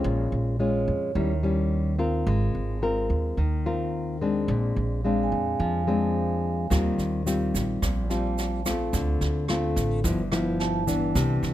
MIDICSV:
0, 0, Header, 1, 5, 480
1, 0, Start_track
1, 0, Key_signature, -2, "minor"
1, 0, Tempo, 555042
1, 41, Time_signature, 4, 2, 24, 8
1, 9976, End_track
2, 0, Start_track
2, 0, Title_t, "Vibraphone"
2, 0, Program_c, 0, 11
2, 0, Control_c, 0, 64, 127
2, 50, Control_c, 0, 64, 0
2, 196, Control_c, 0, 64, 127
2, 523, Note_on_c, 0, 73, 43
2, 1011, Control_c, 0, 64, 0
2, 1153, Note_off_c, 0, 73, 0
2, 4052, Control_c, 0, 64, 127
2, 4360, Note_on_c, 0, 77, 41
2, 4523, Note_on_c, 0, 80, 40
2, 4992, Note_off_c, 0, 77, 0
2, 5133, Note_off_c, 0, 80, 0
2, 5814, Control_c, 0, 64, 0
2, 5983, Control_c, 0, 64, 127
2, 7002, Note_on_c, 0, 81, 34
2, 7634, Note_off_c, 0, 81, 0
2, 7733, Control_c, 0, 64, 0
2, 8838, Control_c, 0, 64, 127
2, 9163, Note_on_c, 0, 81, 51
2, 9654, Control_c, 0, 64, 0
2, 9796, Note_off_c, 0, 81, 0
2, 9834, Control_c, 0, 64, 127
2, 9976, End_track
3, 0, Start_track
3, 0, Title_t, "Nylon-string guitar"
3, 0, Program_c, 1, 24
3, 0, Note_on_c, 1, 56, 56
3, 0, Note_on_c, 1, 61, 56
3, 0, Note_on_c, 1, 65, 63
3, 41, Note_on_c, 1, 46, 51
3, 479, Note_off_c, 1, 56, 0
3, 480, Note_off_c, 1, 61, 0
3, 482, Note_off_c, 1, 65, 0
3, 515, Note_on_c, 1, 56, 53
3, 520, Note_on_c, 1, 61, 53
3, 521, Note_on_c, 1, 65, 60
3, 977, Note_off_c, 1, 46, 0
3, 979, Note_off_c, 1, 56, 0
3, 981, Note_off_c, 1, 61, 0
3, 982, Note_off_c, 1, 65, 0
3, 998, Note_on_c, 1, 51, 48
3, 1000, Note_on_c, 1, 55, 49
3, 1004, Note_on_c, 1, 61, 44
3, 1007, Note_on_c, 1, 64, 48
3, 1141, Note_off_c, 1, 55, 0
3, 1141, Note_off_c, 1, 61, 0
3, 1145, Note_off_c, 1, 64, 0
3, 1238, Note_on_c, 1, 55, 56
3, 1244, Note_on_c, 1, 61, 57
3, 1247, Note_on_c, 1, 64, 55
3, 1682, Note_off_c, 1, 55, 0
3, 1683, Note_off_c, 1, 61, 0
3, 1685, Note_off_c, 1, 64, 0
3, 1717, Note_on_c, 1, 60, 58
3, 1722, Note_on_c, 1, 65, 53
3, 1725, Note_on_c, 1, 70, 59
3, 1936, Note_off_c, 1, 51, 0
3, 1964, Note_on_c, 1, 56, 49
3, 2401, Note_off_c, 1, 60, 0
3, 2402, Note_off_c, 1, 65, 0
3, 2405, Note_off_c, 1, 70, 0
3, 2442, Note_on_c, 1, 60, 52
3, 2446, Note_on_c, 1, 70, 54
3, 2448, Note_on_c, 1, 65, 51
3, 2898, Note_off_c, 1, 56, 0
3, 2919, Note_off_c, 1, 60, 0
3, 2920, Note_off_c, 1, 65, 0
3, 2921, Note_off_c, 1, 70, 0
3, 2923, Note_on_c, 1, 51, 48
3, 3164, Note_on_c, 1, 60, 52
3, 3167, Note_on_c, 1, 65, 58
3, 3173, Note_on_c, 1, 70, 57
3, 3604, Note_off_c, 1, 60, 0
3, 3606, Note_off_c, 1, 65, 0
3, 3608, Note_off_c, 1, 70, 0
3, 3645, Note_on_c, 1, 56, 50
3, 3651, Note_on_c, 1, 60, 59
3, 3653, Note_on_c, 1, 62, 50
3, 3858, Note_off_c, 1, 51, 0
3, 3886, Note_on_c, 1, 46, 51
3, 4325, Note_off_c, 1, 56, 0
3, 4327, Note_off_c, 1, 60, 0
3, 4328, Note_off_c, 1, 62, 0
3, 4364, Note_on_c, 1, 56, 50
3, 4369, Note_on_c, 1, 60, 44
3, 4373, Note_on_c, 1, 62, 56
3, 4820, Note_off_c, 1, 46, 0
3, 4844, Note_on_c, 1, 53, 47
3, 5044, Note_off_c, 1, 56, 0
3, 5047, Note_off_c, 1, 60, 0
3, 5048, Note_off_c, 1, 62, 0
3, 5080, Note_on_c, 1, 56, 54
3, 5086, Note_on_c, 1, 60, 57
3, 5090, Note_on_c, 1, 62, 55
3, 5762, Note_off_c, 1, 56, 0
3, 5765, Note_off_c, 1, 60, 0
3, 5767, Note_off_c, 1, 62, 0
3, 5779, Note_off_c, 1, 53, 0
3, 5797, Note_on_c, 1, 51, 52
3, 5797, Note_on_c, 1, 55, 52
3, 5801, Note_on_c, 1, 60, 49
3, 5805, Note_on_c, 1, 65, 54
3, 6240, Note_off_c, 1, 55, 0
3, 6244, Note_off_c, 1, 60, 0
3, 6244, Note_off_c, 1, 65, 0
3, 6280, Note_on_c, 1, 55, 45
3, 6286, Note_on_c, 1, 60, 51
3, 6288, Note_on_c, 1, 65, 50
3, 6736, Note_off_c, 1, 51, 0
3, 6765, Note_on_c, 1, 46, 49
3, 6963, Note_off_c, 1, 55, 0
3, 6965, Note_off_c, 1, 60, 0
3, 6967, Note_off_c, 1, 65, 0
3, 7003, Note_on_c, 1, 55, 59
3, 7008, Note_on_c, 1, 60, 52
3, 7012, Note_on_c, 1, 65, 52
3, 7445, Note_off_c, 1, 55, 0
3, 7447, Note_off_c, 1, 60, 0
3, 7449, Note_off_c, 1, 65, 0
3, 7487, Note_on_c, 1, 57, 58
3, 7488, Note_on_c, 1, 60, 54
3, 7492, Note_on_c, 1, 65, 58
3, 7700, Note_off_c, 1, 46, 0
3, 7725, Note_on_c, 1, 50, 47
3, 8167, Note_off_c, 1, 57, 0
3, 8167, Note_off_c, 1, 60, 0
3, 8169, Note_off_c, 1, 65, 0
3, 8206, Note_on_c, 1, 57, 49
3, 8211, Note_on_c, 1, 60, 47
3, 8215, Note_on_c, 1, 65, 62
3, 8661, Note_off_c, 1, 50, 0
3, 8666, Note_off_c, 1, 57, 0
3, 8668, Note_off_c, 1, 60, 0
3, 8670, Note_off_c, 1, 65, 0
3, 8683, Note_on_c, 1, 53, 51
3, 8685, Note_on_c, 1, 43, 53
3, 8690, Note_on_c, 1, 59, 53
3, 8692, Note_on_c, 1, 64, 56
3, 8824, Note_off_c, 1, 53, 0
3, 8827, Note_off_c, 1, 59, 0
3, 8828, Note_off_c, 1, 64, 0
3, 8925, Note_on_c, 1, 53, 59
3, 8932, Note_on_c, 1, 59, 57
3, 8932, Note_on_c, 1, 64, 59
3, 9367, Note_off_c, 1, 53, 0
3, 9368, Note_off_c, 1, 59, 0
3, 9370, Note_off_c, 1, 64, 0
3, 9401, Note_on_c, 1, 52, 54
3, 9408, Note_on_c, 1, 59, 61
3, 9408, Note_on_c, 1, 62, 62
3, 9622, Note_off_c, 1, 43, 0
3, 9649, Note_on_c, 1, 48, 52
3, 9976, Note_off_c, 1, 48, 0
3, 9976, Note_off_c, 1, 52, 0
3, 9976, Note_off_c, 1, 59, 0
3, 9976, Note_off_c, 1, 62, 0
3, 9976, End_track
4, 0, Start_track
4, 0, Title_t, "Upright bass"
4, 0, Program_c, 2, 32
4, 38, Note_on_c, 2, 34, 99
4, 262, Note_off_c, 2, 34, 0
4, 278, Note_on_c, 2, 34, 80
4, 725, Note_off_c, 2, 34, 0
4, 758, Note_on_c, 2, 41, 80
4, 983, Note_off_c, 2, 41, 0
4, 997, Note_on_c, 2, 39, 95
4, 1924, Note_off_c, 2, 39, 0
4, 1960, Note_on_c, 2, 32, 100
4, 2183, Note_off_c, 2, 32, 0
4, 2202, Note_on_c, 2, 32, 79
4, 2648, Note_off_c, 2, 32, 0
4, 2679, Note_on_c, 2, 39, 79
4, 2903, Note_off_c, 2, 39, 0
4, 2918, Note_on_c, 2, 39, 83
4, 3845, Note_off_c, 2, 39, 0
4, 3876, Note_on_c, 2, 34, 96
4, 4101, Note_off_c, 2, 34, 0
4, 4121, Note_on_c, 2, 34, 81
4, 4567, Note_off_c, 2, 34, 0
4, 4599, Note_on_c, 2, 41, 75
4, 4823, Note_off_c, 2, 41, 0
4, 4839, Note_on_c, 2, 41, 92
4, 5766, Note_off_c, 2, 41, 0
4, 5805, Note_on_c, 2, 39, 95
4, 6027, Note_off_c, 2, 39, 0
4, 6039, Note_on_c, 2, 39, 71
4, 6487, Note_off_c, 2, 39, 0
4, 6526, Note_on_c, 2, 34, 78
4, 6747, Note_off_c, 2, 34, 0
4, 6766, Note_on_c, 2, 34, 81
4, 7690, Note_off_c, 2, 34, 0
4, 7724, Note_on_c, 2, 38, 90
4, 7947, Note_off_c, 2, 38, 0
4, 7965, Note_on_c, 2, 38, 77
4, 8411, Note_off_c, 2, 38, 0
4, 8443, Note_on_c, 2, 33, 80
4, 8666, Note_off_c, 2, 33, 0
4, 8683, Note_on_c, 2, 31, 82
4, 9610, Note_off_c, 2, 31, 0
4, 9646, Note_on_c, 2, 36, 109
4, 9869, Note_off_c, 2, 36, 0
4, 9882, Note_on_c, 2, 36, 86
4, 9976, Note_off_c, 2, 36, 0
4, 9976, End_track
5, 0, Start_track
5, 0, Title_t, "Drums"
5, 5805, Note_on_c, 9, 36, 51
5, 5805, Note_on_c, 9, 82, 64
5, 5808, Note_on_c, 9, 37, 54
5, 5808, Note_on_c, 9, 38, 24
5, 5891, Note_off_c, 9, 82, 0
5, 5892, Note_off_c, 9, 36, 0
5, 5895, Note_off_c, 9, 37, 0
5, 5895, Note_off_c, 9, 38, 0
5, 6046, Note_on_c, 9, 38, 20
5, 6046, Note_on_c, 9, 82, 24
5, 6132, Note_off_c, 9, 38, 0
5, 6133, Note_off_c, 9, 82, 0
5, 6286, Note_on_c, 9, 38, 22
5, 6288, Note_on_c, 9, 82, 52
5, 6372, Note_off_c, 9, 38, 0
5, 6375, Note_off_c, 9, 82, 0
5, 6526, Note_on_c, 9, 36, 20
5, 6530, Note_on_c, 9, 38, 21
5, 6530, Note_on_c, 9, 82, 53
5, 6613, Note_off_c, 9, 36, 0
5, 6616, Note_off_c, 9, 38, 0
5, 6617, Note_off_c, 9, 82, 0
5, 6766, Note_on_c, 9, 36, 46
5, 6766, Note_on_c, 9, 37, 48
5, 6766, Note_on_c, 9, 38, 20
5, 6771, Note_on_c, 9, 82, 52
5, 6852, Note_off_c, 9, 36, 0
5, 6853, Note_off_c, 9, 37, 0
5, 6853, Note_off_c, 9, 38, 0
5, 6858, Note_off_c, 9, 82, 0
5, 7007, Note_on_c, 9, 38, 23
5, 7011, Note_on_c, 9, 82, 24
5, 7094, Note_off_c, 9, 38, 0
5, 7097, Note_off_c, 9, 82, 0
5, 7248, Note_on_c, 9, 82, 44
5, 7249, Note_on_c, 9, 38, 22
5, 7334, Note_off_c, 9, 82, 0
5, 7335, Note_off_c, 9, 38, 0
5, 7486, Note_on_c, 9, 36, 22
5, 7487, Note_on_c, 9, 82, 54
5, 7489, Note_on_c, 9, 37, 56
5, 7489, Note_on_c, 9, 38, 24
5, 7573, Note_off_c, 9, 36, 0
5, 7574, Note_off_c, 9, 82, 0
5, 7575, Note_off_c, 9, 37, 0
5, 7575, Note_off_c, 9, 38, 0
5, 7726, Note_on_c, 9, 36, 55
5, 7726, Note_on_c, 9, 38, 20
5, 7728, Note_on_c, 9, 82, 63
5, 7812, Note_off_c, 9, 36, 0
5, 7813, Note_off_c, 9, 38, 0
5, 7814, Note_off_c, 9, 82, 0
5, 7964, Note_on_c, 9, 38, 23
5, 7971, Note_on_c, 9, 82, 23
5, 8050, Note_off_c, 9, 38, 0
5, 8058, Note_off_c, 9, 82, 0
5, 8202, Note_on_c, 9, 37, 57
5, 8202, Note_on_c, 9, 38, 23
5, 8288, Note_off_c, 9, 37, 0
5, 8288, Note_off_c, 9, 38, 0
5, 8442, Note_on_c, 9, 38, 21
5, 8444, Note_on_c, 9, 36, 21
5, 8452, Note_on_c, 9, 82, 54
5, 8529, Note_off_c, 9, 38, 0
5, 8530, Note_off_c, 9, 36, 0
5, 8538, Note_off_c, 9, 82, 0
5, 8680, Note_on_c, 9, 38, 20
5, 8684, Note_on_c, 9, 36, 45
5, 8691, Note_on_c, 9, 82, 55
5, 8767, Note_off_c, 9, 38, 0
5, 8770, Note_off_c, 9, 36, 0
5, 8777, Note_off_c, 9, 82, 0
5, 8922, Note_on_c, 9, 37, 56
5, 8922, Note_on_c, 9, 38, 23
5, 8932, Note_on_c, 9, 82, 22
5, 9008, Note_off_c, 9, 37, 0
5, 9008, Note_off_c, 9, 38, 0
5, 9018, Note_off_c, 9, 82, 0
5, 9165, Note_on_c, 9, 38, 25
5, 9252, Note_off_c, 9, 38, 0
5, 9407, Note_on_c, 9, 36, 24
5, 9409, Note_on_c, 9, 38, 22
5, 9409, Note_on_c, 9, 82, 56
5, 9493, Note_off_c, 9, 36, 0
5, 9495, Note_off_c, 9, 82, 0
5, 9496, Note_off_c, 9, 38, 0
5, 9647, Note_on_c, 9, 36, 54
5, 9648, Note_on_c, 9, 37, 56
5, 9648, Note_on_c, 9, 38, 21
5, 9649, Note_on_c, 9, 82, 69
5, 9733, Note_off_c, 9, 36, 0
5, 9734, Note_off_c, 9, 37, 0
5, 9734, Note_off_c, 9, 38, 0
5, 9735, Note_off_c, 9, 82, 0
5, 9887, Note_on_c, 9, 38, 23
5, 9887, Note_on_c, 9, 82, 22
5, 9973, Note_off_c, 9, 38, 0
5, 9973, Note_off_c, 9, 82, 0
5, 9976, End_track
0, 0, End_of_file